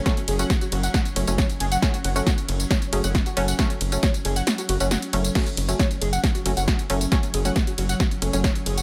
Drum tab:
CC |----------------|----------------|----------------|x---------------|
RD |--x---x---x---x-|--x---x---x---x-|--x---x---x---x-|--x---x---x---x-|
HH |xxoxxxoxxxoxxxox|xxoxxxoxxxoxxxox|xxoxxxoxxxoxxxox|xxoxxxoxxxoxxxox|
TB |xx-xxx-xxx-xxx-x|xx-xxx-xxx-xxx-x|xx-xxx-xxx-xxx-x|xx-xxx-xxx-xxx-x|
SD |o---o---o---o---|o---o---o---o---|o---o---o---o---|o---o---o---o---|
BD |o---o---o---o---|o---o---o---o---|o---o-----------|o---o---o---o---|

CC |----------------|
RD |--x---x---x---x-|
HH |xxoxxxoxxxoxxxox|
TB |xx-xxx-xxx-xxx-x|
SD |o---o---o---o---|
BD |o---o---o---o---|